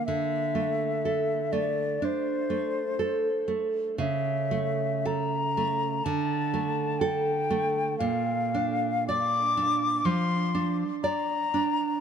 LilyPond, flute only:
\new Staff \with { instrumentName = "Flute" } { \time 4/4 \key d \minor \tempo 4 = 61 e''4. d''8 c''4. r8 | e''4 bes''4 a''4 g''4 | f''4 d'''4 c'''8 r8 bes''4 | }